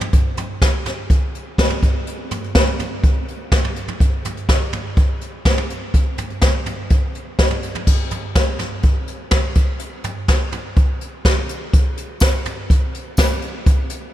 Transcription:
0.01 floor tom
0.13 kick, closed hi-hat
0.37 closed hi-hat, floor tom
0.61 kick, snare, closed hi-hat
0.86 snare, closed hi-hat, floor tom
1.10 kick, closed hi-hat
1.35 closed hi-hat
1.58 kick, snare, closed hi-hat
1.70 floor tom
1.83 kick, closed hi-hat
2.07 closed hi-hat
2.31 closed hi-hat, floor tom
2.44 closed hi-hat
2.55 kick, snare, closed hi-hat
2.79 closed hi-hat, floor tom
3.03 kick, closed hi-hat
3.28 closed hi-hat
3.52 kick, snare, closed hi-hat
3.64 floor tom
3.76 closed hi-hat
3.88 floor tom
4.00 kick, closed hi-hat
4.25 closed hi-hat, floor tom
4.37 closed hi-hat
4.49 kick, snare, closed hi-hat
4.73 closed hi-hat, floor tom
4.97 kick, closed hi-hat
5.21 closed hi-hat
5.45 kick, snare, closed hi-hat
5.58 floor tom
5.70 closed hi-hat
5.94 kick, closed hi-hat
6.18 closed hi-hat, floor tom
6.30 closed hi-hat
6.41 kick, snare, closed hi-hat
6.66 closed hi-hat, floor tom
6.90 kick, closed hi-hat
7.15 closed hi-hat
7.39 kick, snare, closed hi-hat
7.50 floor tom
7.63 closed hi-hat
7.75 floor tom
7.87 kick, crash
8.11 closed hi-hat, floor tom
8.35 kick, snare, closed hi-hat
8.59 snare, closed hi-hat, floor tom
8.83 kick, closed hi-hat
9.07 closed hi-hat
9.31 kick, snare, closed hi-hat
9.55 kick, closed hi-hat
9.79 closed hi-hat
10.04 closed hi-hat, floor tom
10.28 kick, snare, closed hi-hat
10.52 closed hi-hat, floor tom
10.76 kick, closed hi-hat
11.01 closed hi-hat
11.25 kick, snare, closed hi-hat
11.49 closed hi-hat
11.73 kick, closed hi-hat
11.97 closed hi-hat
12.20 kick, snare, closed hi-hat, tambourine
12.45 closed hi-hat, floor tom
12.70 kick, closed hi-hat
12.94 closed hi-hat
13.17 kick, snare, closed hi-hat, tambourine
13.42 closed hi-hat
13.66 kick, closed hi-hat
13.90 closed hi-hat

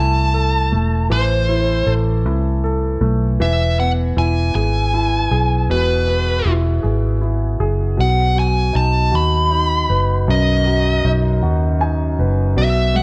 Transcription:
Already playing: C2 A3 E4 A4 A5
0.34 A4
0.72 E1 A3
1.10 A1 E3 C5
1.49 E4
1.86 A1 A4
2.25 C2 E4
2.64 A4
3.01 B1 A3
3.40 E1 E3 E5
3.79 B3 F#5
4.17 E1 E4 G#5
4.55 G#1 G#4 G#5
4.94 E4
5.31 B1 G#4
5.69 E1 B2 B4
6.08 B3
6.45 E1 E4
6.83 G#1 G#4
7.21 E4
7.60 F#1 G#4
7.97 B1 B2 F#5
8.35 F#3
8.39 G#5
8.73 B1 D#4 A5
9.12 D#2 F#4 B5
9.51 D#4
9.89 F#1 B4
10.28 B1 F#2 D#5
10.66 F#3
11.05 B1 D#4
11.43 D#2 F#4
11.81 D#4 G#5
12.19 F#1 B4
12.56 B1 B2 E5
12.94 G#3 F#5

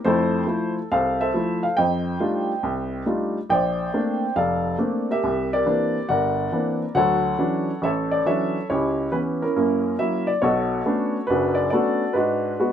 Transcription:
0.04 F2 A3 E4 A4 C5
0.47 F3 A3 E4
0.92 C2 A4 C5 F5
1.21 A4 C5 E5
1.34 F3 A3 E4
1.63 F5
1.77 F2 C5 D#5 G5
2.20 G3 A3 D4 D#4 F4
2.63 C2
3.06 G3 A3 D4 D#4 F4
3.50 A#1 C5 D5 G5
3.94 A3 A#3 C4 D4
4.36 F1 A4 D5 F5
4.79 A3 A#3 C4 D4
5.11 G4 A#4 E5
5.24 C2
5.53 G4 A#4 D5
5.66 E3 A#3 C4 D4
6.09 G1 A#4 D5 F#5
6.52 E3 A#3 C4 D4
6.95 D2 F#3 A4 C#5 F#5
7.39 E3 F#3 C#4 D4
7.82 A1 A4 C#5 E5
8.11 D5
8.26 E3 F#3 C#4 D4 A4 C#5 E5
8.70 C#2 E4 G4 C#5
9.12 E3 B3 C#4 B4
9.42 C#4 E4 A#4
9.56 F#2 A#3
9.99 F#3 A#3 E4 E5
10.27 D5
10.42 B1 B2 F#4 A4 C#5
10.86 A3 B3 C#4 D4
11.27 F#1 F#2 D4 F#4 B4
11.55 D5
11.70 A3 B3 C#4 D4 F#4 A4 D5
12.13 G#2 D4 F#4 B4
12.60 G#3 B3 F#4

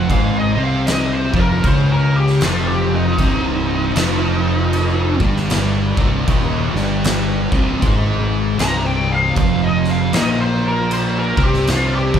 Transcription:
0.09 G#1 G#2 G#3 F5, kick, crash
0.39 D#5
0.56 C2 C3 C4
0.64 F5
0.87 D#5, snare, crash
1.13 C5
1.33 F1 F2 F3, kick
1.40 A#4
1.64 C#2 C#3 C#4, kick, crash
1.68 C5
1.92 A#4
2.16 G4
2.27 snare
2.41 F1 F2 F3 F4, snare, crash
2.68 G4
2.95 D#4
3.18 C1 C2 C3, kick, crash
3.95 F1 F2 F3, snare, crash
4.73 crash
5.20 G1 G2 G3, kick
5.36 snare
5.50 snare, crash
5.97 C1 C2 C3, kick
6.28 D#1 D#2 D#3, kick, crash
6.74 G1 G2 G3, snare
7.04 snare, crash
7.52 C1 C2 C3, kick
7.82 G#1 G#2 G#3, kick, crash
8.59 C1 C2 C3 A#5, snare, crash
8.85 G5
9.12 F5
9.36 F1 F2 F3 F5, kick, crash
9.64 D#5
9.84 snare
9.91 F5
10.13 A#1 A#2 A#3 D#5, snare, crash
10.41 C5
10.68 A#4
10.91 C5, crash
11.19 A#4
11.37 C2 C3 C4, kick
11.43 G4
11.54 snare
11.67 F4, snare, crash
11.96 G4
12.14 F1 F2 F3, kick

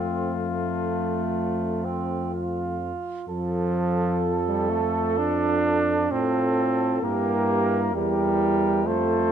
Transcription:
Already playing: F2 F3 A3 C4 F4
0.43 A3
1.85 C4
2.34 F4
3.28 F2 F3 F4 A4
4.48 G3
4.70 A3
5.18 D4
6.11 A2 C4 F4 A4
7.02 G2 A#3 E4 G4 A#4
7.95 E2 G3 E4 G4 A#4
8.86 F2 A3 F4 A4 C5

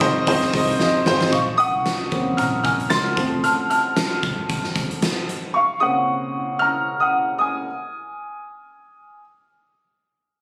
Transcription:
Already playing: D#4 A#4 D#5 D#6
0.00 F1 C4 D#4 F4 G#4 C5, kick, hi-hat pedal, open hi-hat
0.27 C4 D#4 F4 G#4 C5, kick, hi-hat pedal, open hi-hat
0.41 snare
0.53 C2 C4 D#4 F4 G#4 D#5, kick, hi-hat pedal, open hi-hat
0.68 open hi-hat
0.79 F2 C4 D#4 F4 G#4 D#5, snare
1.06 G#1 C4 D#4 F4 G#4 C5, snare
1.21 snare
1.32 A#1 F5 C#6, kick, closed hi-hat
1.57 F#5 D#6, closed hi-hat
1.74 C2
1.86 snare, closed hi-hat
2.11 F2 C#3 A#3 C4, kick, closed hi-hat
2.37 A#1 A#5 F6, kick, closed hi-hat
2.64 G#5 F6, kick, closed hi-hat
2.80 closed hi-hat
2.90 C#2 C6 A6, snare, closed hi-hat
3.16 F1 F3 A3 C4, kick, closed hi-hat
3.44 A5 F6, closed hi-hat
3.70 A5 F6, closed hi-hat
3.97 snare, closed hi-hat
4.23 kick, closed hi-hat
4.49 kick, closed hi-hat
4.64 snare
4.76 kick, closed hi-hat
4.91 closed hi-hat
5.02 snare, closed hi-hat
5.29 closed hi-hat
5.54 F5 C#6
5.80 C#3 A#3 C4 F#5 D#6
6.59 A#5 F6
7.00 F#5 D#6
7.39 G#5 D#6

